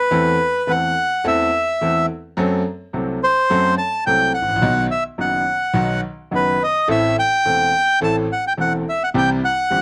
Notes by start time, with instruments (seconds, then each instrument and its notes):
Already playing: bandoneon B4
0.11 grand piano E2 E3 A3 C4 A4
0.67 grand piano E2 E3 A3 C4 A4, bandoneon F#5
1.24 grand piano E2 E3 A3 C4 A4, bandoneon E5
1.81 grand piano E2 E3 A3 C4 A4
2.37 grand piano F#2 F#3 A3 C4 A4
2.93 grand piano C2 C3 F#3 A3 C4 A4
3.24 bandoneon C5
3.50 grand piano F#2 F#3 A3 C4 A4
3.78 bandoneon A5
4.06 grand piano C2 C3 F#3 A3 C4 A4, bandoneon G5
4.34 bandoneon F#5
4.42 grand piano G#1
4.49 grand piano A1
4.56 grand piano A#1
4.62 grand piano B1 B2 D#3 F#3 B3 F#4
4.91 bandoneon E5
5.18 grand piano F#1 F#2 D#3 F#3 B3 F#4, bandoneon F#5
5.73 grand piano B1 B2 D#3 F#3 B3 F#4
6.31 grand piano F#1 F#2 D#3 F#3 B3 F#4, bandoneon B4
6.63 bandoneon D#5
6.88 grand piano A1 A2 E3 A3 C4 A4, bandoneon E5
7.19 bandoneon G5
7.45 grand piano E1 E2 E3 A3 C4 A4
8.01 grand piano A1 A2 E3 A3 C4 A4, bandoneon A5
8.32 bandoneon F#5
8.47 bandoneon G5
8.57 grand piano E1 E2 E3 A3 C4 A4, bandoneon F#5
8.89 bandoneon E5
9.04 bandoneon F#5
9.14 grand piano C2 C3 E3 G3 C4 G4, bandoneon G5
9.45 bandoneon F#5
9.70 grand piano G1 G2 E3 G3 C4 G4